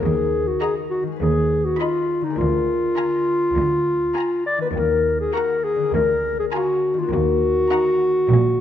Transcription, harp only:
Already playing: D#3 A#3 F#4 A#4
1.03 D#3
1.07 G#3
1.12 G#4
1.17 B4
2.21 D3
2.26 A#3
2.30 G#4
2.35 A#4
4.58 D#3
4.62 A#3
4.67 F#4
4.71 A#4
5.76 D3
5.80 A#3
5.84 G#4
5.89 A#4
6.94 D#3
6.99 A#3
7.03 F#4
7.07 A#4

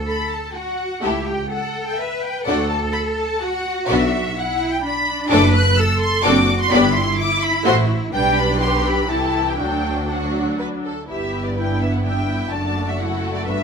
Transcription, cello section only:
Already playing: A4
0.56 F#4
1.04 G4
1.52 A4
1.99 B4
2.47 A4
3.42 F#4
4.37 E4
4.84 D4
5.31 B4
5.78 A4
6.25 F#4
6.72 E4
8.13 D4
8.61 G4
9.10 E4
9.60 D4
11.09 G2
12.53 F#2
13.48 G2

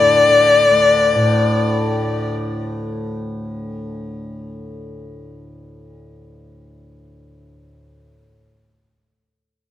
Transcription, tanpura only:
Already playing: D2 A2 D3
0.28 D3
0.71 D2
1.16 A2

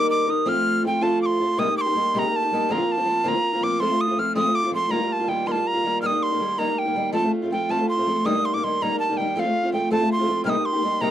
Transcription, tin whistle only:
0.10 D6
0.30 D#6
0.49 F6
0.87 G5
1.03 A5
1.22 C6 D6
1.59 D#6
1.77 C6 D6
2.15 C6
2.19 A#5
2.36 A5
2.72 A#5
2.92 A5
3.28 A#5
3.63 D6
3.80 C6
4.01 D#6
4.19 F6
4.36 D#6
4.55 D6
4.75 C6
4.91 A#5
5.12 A5
5.29 G5
5.47 C6
5.52 A5
5.67 A#5
6.02 F6
6.06 D#6
6.23 C6
6.59 A#5
6.79 G5
7.14 A5
7.52 G5
7.71 A5
7.89 C6
8.26 D#6
8.45 C6
8.54 D6
8.64 C6
8.82 A#5
9.00 A5
9.17 G5
9.35 G5
9.39 F5
9.73 G5
9.92 A5
10.12 C6
10.45 F6
10.49 D#6
10.65 C6
11.01 A#5

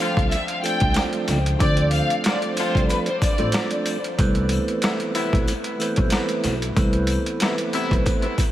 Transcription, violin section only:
0.00 F5
0.31 E5
0.49 F5
0.64 G5
1.60 D5
1.93 F5
2.27 D5
2.57 C5
2.89 B4
3.07 C5
3.21 D5

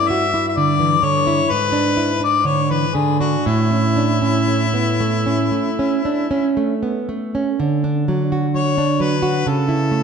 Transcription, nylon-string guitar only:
Already playing: G2 E4
0.10 F#4
0.34 E4
0.57 D3
0.80 E3
1.03 D3
1.27 E4
1.51 G#2
1.72 D4
1.97 E4
2.20 D4
2.45 D3
2.70 E3
2.95 D3
3.20 D4
3.46 A2
3.71 C#4
3.97 D4
4.22 C#4
4.48 A3
4.74 B3
5.00 A3
5.26 C#4
5.52 A3
5.79 C#4
6.05 D4
6.31 C#4
6.57 A3
6.83 B3
7.09 A3
7.35 C#4
7.60 D3
7.84 D4
8.08 F#3
8.32 F#4
8.54 F#3
8.78 D4
9.00 F#3
9.22 F#4
9.47 C#3
9.69 E4
9.91 A3

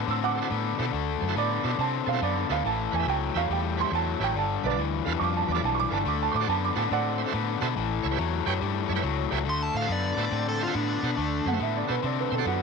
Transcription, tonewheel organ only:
0.35 A4 C5
0.42 E4 F#4 A4 C5
0.78 E4 F#4 A4 C5
1.21 A4 C5
1.28 E4 F#4 A4 C5
1.63 E4 F#4 A4 C5
2.06 A4 C5
2.13 E4 F#4 A4 C5
2.49 E4 F#4 A4 C5
2.92 B4 C#5
2.99 E4 G4 B4 E5
3.34 E4 G4 B4 E5
3.78 B4 C#5
3.84 E4 G4 B4 C#5
4.20 E4 G4 B4 C#5
4.63 B4 D5
4.70 F4 A4 B4 D5
5.05 F4 A4 B4 F5
5.47 B4 D5
5.55 F4 A4 B4 D5
5.90 F4 A4 B4 D5
6.32 C5 E5
6.40 F#4 A4 C5 D5
6.75 F#4 A4 C5 E5
7.18 C5 E5
7.26 F#4 A4 C5 E5
7.61 F#4 A4 C5 E5
8.03 C#5 E5
8.11 G4 B4 C#5 E5
8.46 G4 B4 C#5 G5
8.88 C#5 E5
8.96 G4 B4 C#5 E5
9.30 G4 B4 C#5 E5
9.74 C5 E5
9.81 F#4 A4 C5 E5
10.17 F#4 A4 C5 E5
10.59 C5 E5
10.67 F#4 A4 C5 E5
11.03 F#4 A4 C5 F#5
11.46 C5 E5
11.53 F#4 A4 C5 E5
11.87 F#4 A4 C5 E5
12.30 C5 E5
12.38 F#4 A4 C5 D5

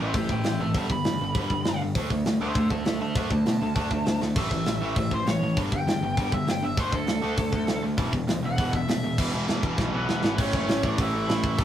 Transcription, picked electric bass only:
0.00 A1
0.14 A1
0.29 A1
0.45 A1
0.59 G#1
0.75 G1
0.90 G1
1.06 E2
1.21 G1
1.35 G1
1.50 G1
1.66 G1
1.95 D2
2.10 D2
2.26 D2
2.40 D2
2.55 D2
2.70 D2
2.86 D2
3.00 D2
3.15 D2
3.30 D2
3.46 B2
3.61 D2
3.75 D2
3.90 D2
4.05 D2
4.36 A1
4.50 A1
4.67 A1
4.81 A1
4.96 A1
5.11 A1
5.26 A1
5.41 A1
5.57 G1
5.72 G1
5.87 E2
6.01 G1
6.17 G1
6.32 G1
6.47 G1
6.77 D2
6.92 D2
7.07 D2
7.22 D2
7.38 D2
7.52 D2
7.68 D2
7.83 D2
7.98 E1
8.13 E1
8.28 D2
8.43 E1
8.59 E1
8.73 E1
8.88 E1
9.18 E1
9.34 E1
9.49 E1
9.63 E1
9.78 B1
9.93 B1
10.08 E1
10.23 G#1
10.38 A1
10.53 F#1
10.68 A1
10.84 A1
10.98 A1
11.13 A1
11.28 A1
11.59 A1

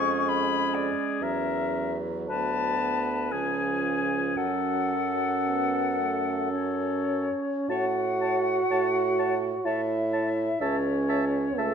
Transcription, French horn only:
Already playing: G#3
1.22 F#3
3.32 F3
4.38 F#3
5.47 B3
5.99 A3
6.52 C#4
7.70 F#4
9.66 E4
10.62 C#4
11.58 A3

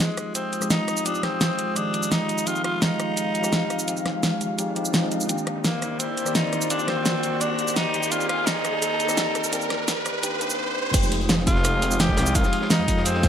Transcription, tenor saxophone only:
0.00 G#3
0.35 C4
0.70 D#4
1.06 D4
1.23 C4
1.76 D4
2.11 D#4
2.47 F4
2.64 F4
2.82 D#4
5.64 A#3
6.00 C4
6.35 D#4
6.70 D4
6.88 C4
7.41 D4
7.76 D#4
8.11 F4
8.29 F4
8.47 D#4
11.47 F4
12.00 G4
12.35 F4
12.70 D#4
13.06 C4

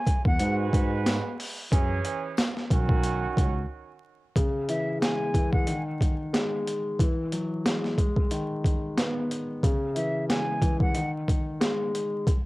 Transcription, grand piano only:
4.36 C#3
4.69 E3
5.01 G#3
5.34 E3
5.68 D#3
6.33 G#3
7.00 E3
7.32 F#3
7.65 G#3
7.98 G#3
8.31 D#3
8.97 B3
9.64 C#3
9.96 E3
10.29 G#3
10.61 E3
10.95 D#3
11.60 G#3

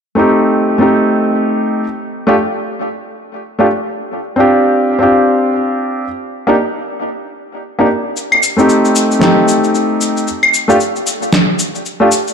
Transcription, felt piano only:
0.15 A3 C4 D#4 G4
0.78 A3 C4 D#4
0.82 G4
2.27 A3 D4 F4 G4
3.59 A3 D4 F4 G4
4.36 C4 D4 F4
4.40 G4
4.99 C4 D4 F4
5.03 G4
6.47 A#3 D4 D#4 G4
7.79 A#3 D4 D#4 G4
8.57 A3 C4 D#4 G4
9.19 A3 C4 D#4 G4
10.68 A3 D4 F4 G4
12.00 A3 D4 F4 G4

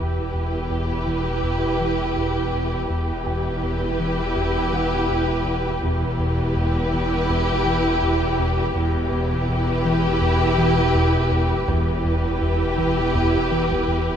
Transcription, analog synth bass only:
Already playing: E2
0.34 E2
0.70 E2
1.07 E3
1.43 E2
1.80 E3
2.17 E2
2.54 E2
2.90 E2
3.27 E2
3.63 E2
4.00 E3
4.36 E2
4.73 E3
5.09 E2
5.46 E2
5.83 E2
6.19 E2
6.56 E2
6.93 E3
7.29 E2
7.66 E3
8.03 E2
8.39 E2
8.76 E2
9.12 E2
9.48 E2
9.85 E3
10.21 E2
10.58 E3
10.95 E2
11.31 E2
11.68 E2
12.05 E2
12.42 E2
12.78 E3
13.15 E2
13.52 E3
13.88 E2

